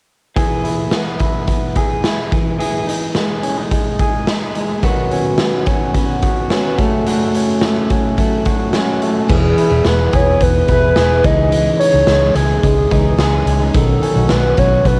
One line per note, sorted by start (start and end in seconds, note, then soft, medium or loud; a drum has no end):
0.36 2.31 E3 medium
0.36 1.76 G#4 medium
0.36 kick medium
0.36 closed hi-hat medium
0.64 1.20 E4 soft
0.64 closed hi-hat medium
0.91 1.47 B3 medium
0.91 snare medium
0.91 closed hi-hat medium
1.19 2.04 E4 soft
1.19 kick medium
1.19 closed hi-hat medium
1.47 2.38 B3 soft
1.47 kick medium
1.47 closed hi-hat medium
1.76 2.59 G#4 medium
1.76 kick medium
1.76 closed hi-hat medium
2.04 2.87 E4 soft
2.04 snare medium
2.04 closed hi-hat medium
2.32 2.58 E3 medium
2.32 kick medium
2.32 closed hi-hat medium
2.59 4.82 E3 medium
2.59 3.99 G#4 medium
2.59 closed hi-hat medium
2.87 3.42 D#4 soft
2.87 closed hi-hat medium
3.15 3.70 G#3 medium
3.15 snare medium
3.15 closed hi-hat medium
3.43 3.58 C#4 medium
3.43 closed hi-hat medium
3.58 4.27 D#4 soft
3.71 4.55 G#3 medium
3.71 kick medium
3.71 closed hi-hat medium
3.99 4.83 G#4 soft
3.99 kick medium
3.99 closed hi-hat medium
4.27 4.89 D#4 medium
4.27 snare medium
4.27 closed hi-hat medium
4.55 4.89 G#3 medium
4.55 closed hi-hat medium
4.82 5.66 B2 medium
4.82 5.67 D#3 medium
4.82 6.84 D#3 medium
4.82 5.69 F#3 medium
4.82 5.67 B3 medium
4.82 5.68 C#4 medium
4.82 6.23 F#4 medium
4.82 5.66 F#4 medium
4.82 kick medium
4.82 closed hi-hat medium
5.11 5.66 C#4 soft
5.11 closed hi-hat medium
5.38 5.94 B3 medium
5.38 snare loud
5.38 closed hi-hat medium
5.66 5.93 F#3 soft
5.66 5.95 B3 soft
5.66 6.51 C#4 medium
5.66 5.95 C#4 soft
5.66 5.95 F#4 soft
5.66 kick medium
5.66 closed hi-hat medium
5.94 6.50 F#3 medium
5.94 6.79 B3 medium
5.94 6.50 B3 medium
5.94 6.52 C#4 medium
5.94 6.53 F#4 medium
5.94 kick medium
5.94 closed hi-hat medium
6.22 7.08 F#4 medium
6.22 kick medium
6.22 closed hi-hat medium
6.50 6.78 F#3 soft
6.50 6.79 B3 medium
6.50 7.35 C#4 medium
6.50 6.78 C#4 medium
6.50 6.77 F#4 medium
6.50 snare loud
6.50 closed hi-hat medium
6.78 7.92 C#3 medium
6.78 7.91 F#3 medium
6.78 7.06 A3 medium
6.78 7.90 A3 medium
6.78 7.90 C#4 medium
6.78 7.89 F#4 medium
6.78 kick medium
6.78 closed hi-hat medium
6.82 7.92 F#2 soft
7.06 7.62 A3 medium
7.06 8.45 F#4 medium
7.06 closed hi-hat medium
7.34 7.89 C#4 soft
7.34 closed hi-hat medium
7.61 8.17 A3 medium
7.61 snare loud
7.61 closed hi-hat medium
7.90 8.16 F#3 soft
7.90 8.17 A3 soft
7.90 8.73 C#4 soft
7.90 8.18 C#4 soft
7.90 8.18 F#4 soft
7.90 kick medium
7.90 closed hi-hat medium
8.17 8.72 F#3 medium
8.17 9.01 A3 medium
8.17 8.72 A3 medium
8.17 8.73 C#4 medium
8.17 8.74 F#4 medium
8.17 kick medium
8.17 closed hi-hat medium
8.45 9.35 F#4 medium
8.45 kick medium
8.45 closed hi-hat medium
8.73 9.28 F#3 medium
8.73 9.28 A3 medium
8.73 9.35 C#4 medium
8.73 9.29 C#4 medium
8.73 9.30 F#4 medium
8.73 snare medium
8.73 closed hi-hat medium
9.02 9.35 A3 medium
9.02 closed hi-hat medium
9.28 9.52 E1 medium
9.28 9.71 E3 medium
9.28 11.24 E3 medium
9.28 9.71 B3 medium
9.28 9.70 E4 medium
9.28 9.68 G#4 medium
9.28 9.89 G#4 medium
9.28 kick loud
9.28 crash medium
9.58 10.68 E4 medium
9.58 closed hi-hat medium
9.70 9.83 E1 medium
9.70 10.12 B3 soft
9.70 10.12 E4 soft
9.70 10.12 G#4 medium
9.85 10.08 E1 medium
9.85 10.40 B3 medium
9.85 10.16 B4 medium
9.85 snare loud
9.85 closed hi-hat medium
10.12 10.36 E1 medium
10.12 10.68 E3 soft
10.12 10.69 B3 medium
10.12 10.70 E4 medium
10.12 10.96 G#4 medium
10.12 10.71 G#4 medium
10.12 10.44 C#5 medium
10.12 kick medium
10.12 closed hi-hat medium
10.40 10.63 E1 medium
10.40 11.30 B3 medium
10.40 10.68 B4 loud
10.40 kick medium
10.40 closed hi-hat medium
10.68 10.91 E1 medium
10.68 10.95 E3 medium
10.68 10.96 B3 medium
10.68 11.79 E4 soft
10.68 10.97 E4 medium
10.68 10.98 G#4 medium
10.68 11.27 B4 loud
10.68 kick medium
10.68 closed hi-hat medium
10.96 11.19 E1 medium
10.96 11.24 E3 medium
10.96 11.25 B3 medium
10.96 11.25 E4 medium
10.96 12.35 G#4 medium
10.96 11.25 G#4 medium
10.96 snare loud
10.96 closed hi-hat medium
11.24 11.70 C#2 medium
11.24 11.94 C#3 medium
11.24 11.50 E3 medium
11.24 11.94 E3 medium
11.24 11.95 C#4 medium
11.24 11.94 D#4 medium
11.24 11.91 G#4 medium
11.24 11.79 D#5 loud
11.24 kick loud
11.24 closed hi-hat medium
11.52 13.74 E3 medium
11.52 closed hi-hat medium
11.79 12.91 D#4 medium
11.79 12.36 C#5 medium
11.79 closed hi-hat medium
11.93 12.05 C#2 medium
11.93 12.35 C#4 soft
11.93 12.35 D#4 soft
11.93 12.35 G#4 medium
12.07 12.30 C#2 medium
12.07 12.63 G#3 medium
12.07 snare loud
12.07 closed hi-hat medium
12.35 12.58 C#2 medium
12.35 12.89 E3 medium
12.35 12.91 C#4 medium
12.35 12.92 D#4 medium
12.35 13.46 G#4 medium
12.35 13.18 G#4 medium
12.35 12.92 G#4 medium
12.35 closed hi-hat medium
12.63 12.86 C#2 medium
12.63 13.46 G#3 medium
12.63 kick medium
12.63 closed hi-hat medium
12.90 13.14 C#2 medium
12.90 13.16 E3 medium
12.90 13.17 C#4 medium
12.90 13.80 D#4 medium
12.90 13.18 D#4 medium
12.90 13.19 G#4 medium
12.90 kick medium
12.90 closed hi-hat medium
13.17 13.41 C#2 medium
13.17 13.60 E3 medium
13.17 13.60 C#4 medium
13.17 13.60 D#4 medium
13.17 13.80 G#4 medium
13.17 13.58 G#4 medium
13.17 snare loud
13.17 closed hi-hat medium
13.46 13.69 C#2 medium
13.46 13.80 G#3 medium
13.46 closed hi-hat medium
13.59 13.74 C#4 soft
13.59 13.74 D#4 soft
13.59 13.74 G#4 soft
13.73 13.97 B1 medium
13.73 14.16 B2 medium
13.73 15.00 D#3 medium
13.73 14.16 F#3 medium
13.73 14.16 C#4 medium
13.73 14.16 D#4 medium
13.73 14.14 F#4 medium
13.73 14.32 A4 medium
13.73 kick loud
13.73 closed hi-hat medium
14.02 15.00 C#4 medium
14.02 closed hi-hat medium
14.15 14.27 B1 medium
14.15 14.57 C#4 soft
14.15 14.58 D#4 soft
14.15 14.57 F#4 medium
14.29 14.53 B1 medium
14.29 14.84 B3 medium
14.29 14.60 B4 loud
14.29 snare loud
14.29 closed hi-hat medium
14.57 14.81 B1 medium
14.57 15.00 F#3 medium
14.57 15.00 C#4 medium
14.57 15.00 D#4 medium
14.57 15.00 F#4 medium
14.57 14.88 C#5 medium
14.57 kick medium
14.57 closed hi-hat medium
14.85 15.00 B1 medium
14.85 15.00 B3 medium
14.85 15.00 B4 loud
14.85 kick medium
14.85 closed hi-hat medium